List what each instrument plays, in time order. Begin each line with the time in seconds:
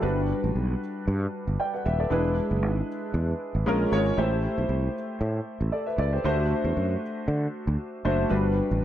Already playing: grand piano E4 A4
0.01 fretless electric bass G1, grand piano G3 D4 F#4 B4
0.44 fretless electric bass A1
0.55 fretless electric bass B1
1.08 fretless electric bass G2
1.48 fretless electric bass G1
1.60 grand piano D5 G5
1.74 grand piano B4 F#5
1.86 fretless electric bass D#1, grand piano B4 E5
2.00 grand piano A4 D5
2.10 fretless electric bass E1, grand piano G#3 D4 E4 B4
2.51 fretless electric bass F#1
2.62 fretless electric bass G#1
3.14 fretless electric bass E2
3.55 fretless electric bass G#1
3.66 fretless electric bass A#1, grand piano G#3 C#4 F4 A#4
3.92 fretless electric bass G#1, grand piano G#3 C#4 F4 C#5
4.17 fretless electric bass A1, grand piano A3 E4 G4 C5
4.58 fretless electric bass B1
4.69 fretless electric bass C2
5.21 fretless electric bass A2
5.61 fretless electric bass A1
5.72 grand piano A4 D5
5.87 grand piano B4 E5
5.98 fretless electric bass C#2, grand piano A4 D5
6.13 grand piano G4 C5
6.24 fretless electric bass D2, grand piano A3 D4 F#4 C5
6.64 fretless electric bass E2
6.77 fretless electric bass F#2
7.28 fretless electric bass D3
7.67 fretless electric bass D2
8.05 fretless electric bass F#1, grand piano A3 D4 F#4 C5
8.29 fretless electric bass G1, grand piano G3 D4 F#4 B4
8.71 fretless electric bass A1